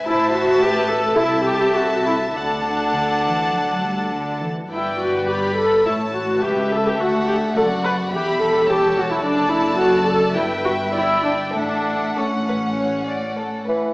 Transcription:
<<
  \new Staff \with { instrumentName = "Violin section" } { \time 4/4 \key d \mixolydian \tempo 4 = 104 a''2 a''2 | a''2.~ a''8 r8 | \key a \mixolydian g''4 b''4 a''4 e''4 | fis''4 fis''4 b''4 a''4 |
a''2 g''4 g''4 | fis''2.~ fis''8 r8 | }
  \new Staff \with { instrumentName = "Violin section" } { \time 4/4 \key d \mixolydian << { e''2 e''2 | fis''2.~ fis''8 r8 | \key a \mixolydian d''2 cis''4 e''4~ | e''4 d''4 e''4 cis''4 |
d''4 d''4 e''2 | e''4 a'8 b'8 cis''8 d''8 a'8 b'8 | } \\ { c''4 b'4 a'2 | a'2.~ a'8 r8 | b'2 cis''4 b'4 | a'4 fis'4 g'4 a'4~ |
a'2 b'4 d''4 | a'4 r2. | } >> }
  \new Staff \with { instrumentName = "Viola section" } { \time 4/4 \key d \mixolydian e'8 fis'8 g'8 a'8 e'8 g'8 fis'8 e'8 | d'2.~ d'8 r8 | \key a \mixolydian e'8 fis'8 g'8 a'8 e'8 fis'8 g'8 a'16 g'16 | fis'8 g'8 a'8 b'8 g'8 a'8 g'8 fis'16 e'16 |
d'8 e'8 fis'8 a'8 e'8 fis'8 e'8 d'8 | d'4 cis'2~ cis'8 r8 | }
  \new Staff \with { instrumentName = "Bassoon" } { \clef bass \time 4/4 \key d \mixolydian r1 | r1 | \key a \mixolydian r1 | r1 |
r1 | r2. r8 e8 | }
  \new Staff \with { instrumentName = "Cello section" } { \clef bass \time 4/4 \key d \mixolydian a,2 c2 | d4 d8 e8 fis8 g8 d8 e8 | \key a \mixolydian g,2 a,4 cis,4 | d,4 fis,4 e,2 |
fis,2 g,2 | a,2.~ a,8 r8 | }
  \new Staff \with { instrumentName = "Double bass section" } { \clef bass \time 4/4 \key d \mixolydian a,,2 c,2 | d,2.~ d,8 r8 | \key a \mixolydian g,,2 a,,4 cis,4 | d,4 fis,,4 e,,2 |
fis,,2 g,,2 | a,,2.~ a,,8 r8 | }
>>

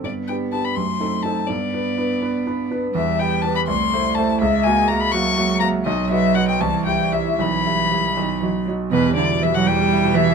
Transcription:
<<
  \new Staff \with { instrumentName = "Violin" } { \time 6/8 \key g \major \tempo 4. = 82 d''8 g''8 a''16 b''16 c'''4 a''8 | d''2~ d''8 r8 | \key e \minor e''8 g''8 a''16 b''16 c'''4 a''8 | e''8 gis''8 ais''16 b''16 cis'''4 ais''8 |
dis''8 e''8 fis''16 g''16 a''8 g''8 e''8 | b''2~ b''8 r8 | b'8 d''8 e''16 fis''16 g''4 e''8 | }
  \new Staff \with { instrumentName = "Grand piano" } { \time 6/8 \key g \major g,8 <b d' g'>8 <b d' g'>8 fis,8 <c' dis' a'>8 <c' dis' a'>8 | g,8 <b d' b'>8 <b d' b'>8 <b d' b'>8 <b d' b'>8 <b d' b'>8 | \key e \minor e,8 <b g' b'>8 <b g' b'>8 c,8 <a e' c''>8 <a e' c''>8 | cis,8 <ais fis' e''>8 <ais fis' e''>8 <ais fis' e''>8 <ais fis' e''>8 <ais fis' e''>8 |
b,,8 <b fis' dis''>8 <b fis' dis''>8 c,8 <g e' e''>8 <g e' e''>8 | b,,8 <g e' e''>8 <g e' e''>8 b,,8 <fis fis' dis''>8 <fis fis' dis''>8 | e,16 g16 e'16 b,16 g16 b,16 e,16 g16 e'16 b,16 g16 b,16 | }
  \new Staff \with { instrumentName = "Cello" } { \clef bass \time 6/8 \key g \major b4. a4. | b2. | \key e \minor g4. a4. | gis4. fis4. |
fis4. e4. | e4. dis8 e8 fis8 | b,8 d8 e16 fis16 g4 e8 | }
>>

